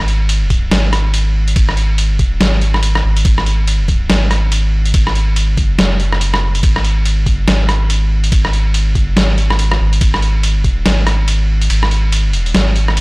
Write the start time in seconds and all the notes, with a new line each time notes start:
Already playing: G#1
0.08 closed hi-hat
0.29 closed hi-hat, ride
0.50 kick, closed hi-hat
0.71 G#1, snare, closed hi-hat, ride
0.93 cross-stick, closed hi-hat
1.14 closed hi-hat, ride
1.48 closed hi-hat
1.56 G#1, kick, closed hi-hat, ride
1.69 cross-stick
1.77 closed hi-hat
1.98 closed hi-hat, ride
2.19 kick, closed hi-hat
2.40 G#1, snare, closed hi-hat, ride
2.61 closed hi-hat
2.74 cross-stick
2.83 closed hi-hat, ride
2.95 cross-stick
3.04 G#1
3.17 closed hi-hat
3.25 G#1, kick, closed hi-hat, ride
3.38 cross-stick
3.46 closed hi-hat
3.67 closed hi-hat, ride
3.88 kick, closed hi-hat
4.10 G#1, snare, closed hi-hat, ride
4.31 cross-stick, closed hi-hat
4.52 closed hi-hat, ride
4.86 closed hi-hat
4.94 G#1, kick, closed hi-hat, ride
5.07 cross-stick
5.15 closed hi-hat
5.36 closed hi-hat, ride
5.53 G1
5.57 kick, closed hi-hat
5.79 F#1, snare, closed hi-hat, ride
6.00 closed hi-hat
6.13 cross-stick
6.21 closed hi-hat, ride
6.34 cross-stick
6.55 closed hi-hat
6.63 G#1, kick, closed hi-hat, ride
6.76 cross-stick
6.84 closed hi-hat
7.05 closed hi-hat, ride
7.22 G1
7.26 kick, closed hi-hat
7.47 G#1, snare, closed hi-hat, ride
7.69 cross-stick, closed hi-hat
7.90 closed hi-hat, ride
8.24 closed hi-hat
8.32 G#1, kick, closed hi-hat, ride
8.45 cross-stick
8.53 closed hi-hat
8.74 closed hi-hat, ride
8.91 G1
8.95 kick, closed hi-hat
9.16 G#1, snare, closed hi-hat, ride
9.38 closed hi-hat
9.50 cross-stick
9.59 closed hi-hat, ride
9.72 cross-stick
9.80 G#1
9.93 closed hi-hat
10.01 G#1, kick, closed hi-hat, ride
10.14 cross-stick
10.22 closed hi-hat
10.43 closed hi-hat, ride
10.64 kick, closed hi-hat
10.86 G#1, snare, closed hi-hat, ride
11.07 cross-stick, closed hi-hat
11.28 closed hi-hat, ride
11.62 closed hi-hat
11.70 G#1, closed hi-hat, ride
11.83 cross-stick
11.91 closed hi-hat
12.12 closed hi-hat, ride
12.33 closed hi-hat
12.46 closed hi-hat
12.54 G#1, snare, closed hi-hat, ride
12.76 closed hi-hat
12.88 cross-stick
12.97 closed hi-hat, ride